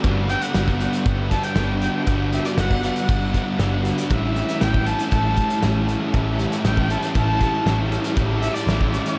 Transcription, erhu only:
0.30 G5
0.42 F#5
0.80 F#5
1.30 A5
1.43 G5
1.80 G5
2.33 E5
2.45 D5
2.59 F#5
2.85 F#5
4.10 E5
4.61 G5
4.87 A5
5.11 A5
6.16 E5
6.66 G5
6.91 A5
7.15 A5
8.41 E5
8.54 D5
8.91 D5
9.15 C#5

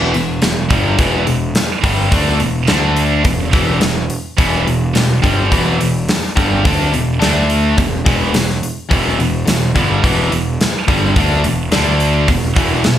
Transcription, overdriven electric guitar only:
Already playing: E2 B2 E3
0.14 E2 B2
0.42 E2 B2
0.70 G2 D3 G3
0.98 E2 B2 E3
1.27 E2 B2
1.83 G2 D3 G3
2.11 D3 A3 D4
2.39 E2 B2
2.68 D3 A3 D4
3.24 E2 B2
3.53 E2 B2 E3
3.81 E2 B2
4.38 E2 B2 E3
4.66 E2 B2
4.95 E2 B2
5.22 G2 D3 G3
5.50 E2 B2 E3
5.78 E2 B2
6.35 G2 D3 G3
6.64 D3 A3 D4
6.92 E2 B2
7.19 D3 A3 D4
7.77 E2 B2
8.05 E2 B2 E3
8.33 E2 B2
8.89 E2 B2 E3
9.18 E2 B2
9.46 E2 B2
9.75 G2 D3 G3
10.02 E2 B2 E3
10.32 E2 B2
10.87 G2 D3 G3
11.16 D3 A3 D4
11.44 E2 B2
11.72 D3 A3 D4
12.28 E2 B2
12.56 E2 B2 E3
12.84 E2 B2

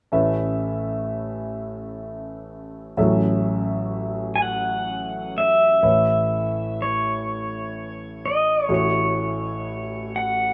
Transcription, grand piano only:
0.12 A1 A2 A3 C#4 B4 E5
2.97 A1 A2 F#3 C#4 A4 E5
5.83 A1 A2 A3 E4 B4 C#5
8.69 A1 A2 A3 E4 F#4 C#5

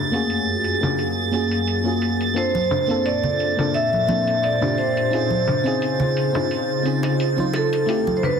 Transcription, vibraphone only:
2.38 C5
3.06 D5
3.74 E5
4.43 D5
4.78 C5
7.56 A4
8.17 C5
8.25 B4

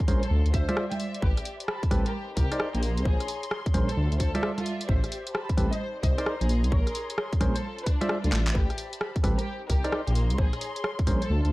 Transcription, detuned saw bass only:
0.08 A#1
0.31 D2
0.46 D2
0.54 D2
1.22 A1
1.91 A1
2.37 C2
2.74 A#1
2.97 C#2
3.05 A#1
3.74 A#1
3.97 D2
4.12 D2
4.20 D2
4.89 A1
5.57 A1
6.03 C2
6.41 A#1
6.64 C#2
6.72 A#1
7.41 A#1
8.24 D2
8.32 A1
8.55 A1
9.24 A1
9.70 C2
10.07 A#1
10.30 C#2
10.38 A#1
11.07 A#1
11.30 D2
11.45 D2

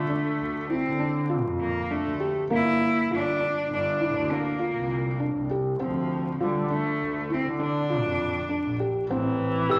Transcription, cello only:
Already playing: A3
0.70 C4
1.60 A#3
1.91 A3
2.53 E4
3.14 D4
3.73 D4
4.33 A#3
5.81 F3
6.42 G3
6.72 A3
7.33 C4
7.61 D4

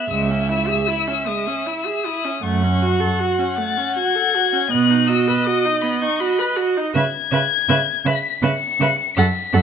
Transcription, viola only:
0.10 G#3
0.29 C#4
0.49 E4
0.68 G#4
0.88 E4
1.08 C#4
1.28 G#3
1.47 C#4
1.66 E4
1.86 G#4
2.06 E4
2.25 C#4
2.44 A3
2.63 C#4
2.82 F#4
3.00 A4
3.20 F#4
3.39 C#4
3.58 A3
3.77 C#4
3.96 F#4
4.15 A4
4.34 F#4
4.53 C#4
4.71 B3
4.90 D#4
5.09 F#4
5.28 B4
5.47 F#4
5.65 D#4
5.83 B3
6.02 D#4
6.20 F#4
6.39 B4
6.57 F#4
6.77 D#4
6.95 B4
7.33 B4
7.69 B4
8.06 B4
8.43 B4
8.81 B4
9.18 A4
9.54 A4

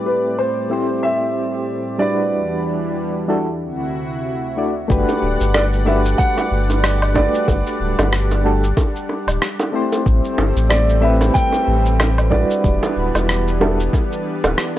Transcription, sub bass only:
4.90 G1
5.22 D1
5.41 G1
6.51 G1
7.48 G1
7.80 D1
7.99 G1
9.27 D1
10.06 A1
10.38 G1
10.56 A1
11.67 A1
12.64 E1
12.96 D1
13.14 E1
14.44 D1

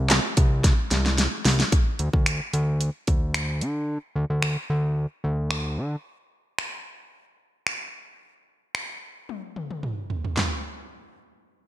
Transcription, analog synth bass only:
Already playing: C2
0.37 C2
0.91 C2
1.45 C2
2.00 D2
2.13 D2
2.53 D2
3.08 D2
3.62 D3
4.16 D2
4.30 D2
4.70 D2
5.24 D2
5.78 D3

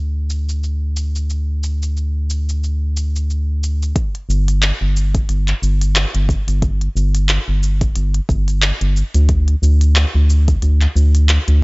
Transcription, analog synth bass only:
Already playing: D2
4.29 G1
4.81 G1
5.29 G1
5.62 G1
6.15 G1
6.48 G1
6.95 G1
7.48 G1
7.95 G1
8.29 G1
8.81 G1
9.14 D2
9.62 D2
10.15 D2
10.62 D2
10.96 D2
11.48 D2

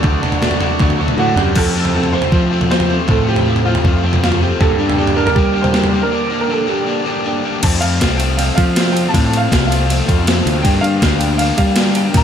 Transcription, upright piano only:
Already playing: A4 D5
1.18 F#4
1.38 G4
1.57 A4
1.94 A4
2.13 C5
2.71 C5
3.09 A4
3.28 G4
3.65 F4
4.24 F4
4.42 G4
4.60 A4
4.99 G4
5.17 A#4
5.26 A#4
5.62 C5
6.02 A#4
6.41 A#4
6.52 A4
6.69 G4
7.63 A5
7.81 F5
8.17 G5
8.37 F5
8.55 F5
8.92 G5
9.08 A5
9.37 F5
9.67 F5
10.62 G5
10.81 F5
11.18 G5
11.38 F5
11.58 F5
11.96 G5
12.17 A#5

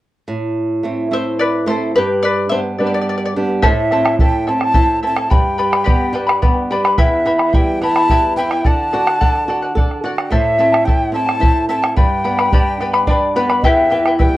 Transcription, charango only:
1.13 C5 E5
1.39 B4 D5
1.68 A4 C5
1.96 G4 B4
2.23 B4 D5
2.49 C5 E5
2.79 B4 D5
2.87 D5
2.95 D5
3.02 D5
3.10 D5
3.18 D5
3.26 D5
3.62 E4 A4 C5 E5 A5
3.91 E4 A4 E5 A5
4.05 E4 A4 A5
4.20 E4 A4 E5 A5
4.47 E4 A4 E5 A5
4.60 E4 A4 A5
4.74 E4 A4 C5 E5 A5
5.02 E4 A4 E5 A5
5.16 E4 A4 A5
5.30 B4 D5 G5 B5
5.58 B4 D5 G5 B5
5.72 B4 D5 B5
5.84 G4 B4 D5 G5 B5
6.13 B4 D5 G5 B5
6.27 B4 D5 B5
6.42 B4 D5 G5 B5
6.71 B4 D5 G5 B5
6.84 B4 D5 B5
6.98 E4 B4 E5 G5 B5
7.26 E4 E5 G5 B5
7.38 E4 E5 B5
7.53 E4 E5 G5 B5
7.82 E4 E5 G5 B5
7.96 E4 E5 B5
8.10 E4 B4 E5 G5 B5
8.37 E4 E5 G5 B5
8.51 E4 E5 B5
8.64 A4 D5 F#5
8.93 A4 D5 F#5
9.07 D5 F#5
9.21 A4 D5 F#5
9.49 A4 D5 F#5
9.62 D5 F#5
9.77 A4 D5 F#5
10.04 A4 D5 F#5
10.19 D5 F#5
10.31 E4 A4 C5 E5 A5
10.58 E4 A4 E5 A5
10.72 E4 A4 A5
10.87 E4 A4 E5 A5
11.14 E4 A4 E5 A5
11.26 E4 A4 A5
11.41 E4 A4 C5 E5 A5
11.69 E4 A4 E5 A5
11.82 E4 A4 A5
11.97 B4 D5 G5 B5
12.24 B4 D5 G5 B5
12.39 B4 D5 B5
12.53 G4 B4 D5 G5 B5
12.81 B4 D5 G5 B5
12.93 B4 D5 B5
13.09 B4 D5 G5 B5
13.36 B4 D5 G5 B5
13.49 B4 D5 B5
13.64 E4 G4 B4 E5 G5
13.90 E4 B4 E5 G5
14.07 E4 B4 G5
14.19 E4 B4 E5 G5

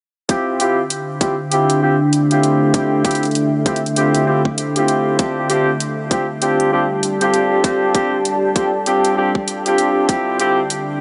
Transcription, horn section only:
0.29 C4 E4 F4 G4
0.60 C4 E4 F4 G4
1.21 C4 E4 F4 G4
1.52 C4 E4 F4 G4
1.82 C4 E4 F4 G4
2.31 C4 E4 F4 G4
2.74 C4 E4 F4 G4
3.05 C4 E4 F4 G4
3.66 C4 E4 F4 G4
3.97 C4 E4 F4 G4
4.27 C4 E4 F4 G4
4.76 C4 E4 F4 G4
5.19 C4 D4 F4 G4
5.50 C4 D4 F4 G4
6.11 C4 D4 F4 G4
6.42 C4 D4 F4 G4
6.73 C4 D4 F4 G4
7.21 C4 D4 F4 G4
7.64 C4 D4 F4 G4
7.95 C4 D4 F4 G4
8.56 C4 D4 F4 G4
8.87 C4 D4 F4 G4
9.17 C4 D4 F4 G4
9.66 C4 D4 F4 G4
10.09 C4 E4 F4 G4
10.40 C4 E4 F4 G4

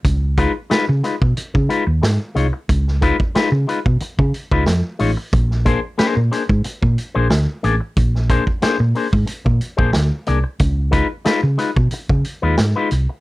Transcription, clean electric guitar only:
0.38 G#3 D#4 F4 B4
0.70 G#3 D#4 F4 B4
0.89 muted clean electric guitar stroke
1.04 G#3 D#4 F4 B4
1.22 muted clean electric guitar stroke
1.54 muted clean electric guitar stroke
1.69 G#3 D#4 F4 B4
1.87 muted clean electric guitar stroke
2.02 muted clean electric guitar stroke
2.35 G#3 D#4 F4 C#5
2.53 muted clean electric guitar stroke
3.01 G#3 D#4 F4 B4
3.35 G#3 D#4 F4 B4
3.67 G#3 D#4 F4 B4
3.86 muted clean electric guitar stroke
4.01 muted clean electric guitar stroke
4.20 muted clean electric guitar stroke
4.52 G#3 D#4 F4 B4
4.67 muted clean electric guitar stroke
4.99 G#3 D#4 F4 C#5
5.17 muted clean electric guitar stroke
5.65 A#3 D4 G#4 C5
5.98 A#3 D4 G#4 C5
6.16 muted clean electric guitar stroke
6.31 A#3 D4 G#4 C5
6.49 muted clean electric guitar stroke
6.65 muted clean electric guitar stroke
6.82 muted clean electric guitar stroke
7.15 A#3 D4 G#4 C5
7.63 A#3 D4 G#4 D5
7.80 muted clean electric guitar stroke
8.30 A#3 D4 G#4 C5
8.62 A#3 D4 G#4 C5
8.95 A#3 D4 G#4 C5
9.13 muted clean electric guitar stroke
9.26 muted clean electric guitar stroke
9.45 muted clean electric guitar stroke
9.77 A#3 D4 G#4 C5
9.92 muted clean electric guitar stroke
10.27 A#3 D4 G#4 D5
10.44 muted clean electric guitar stroke
10.91 G#3 D#4 F4 B4
11.25 G#3 D#4 F4 B4
11.58 G#3 D#4 F4 B4
11.76 muted clean electric guitar stroke
11.93 muted clean electric guitar stroke
12.09 muted clean electric guitar stroke
12.42 G#3 D#4 F4 B4
12.76 G#3 D#4 F4 B4
13.09 muted clean electric guitar stroke

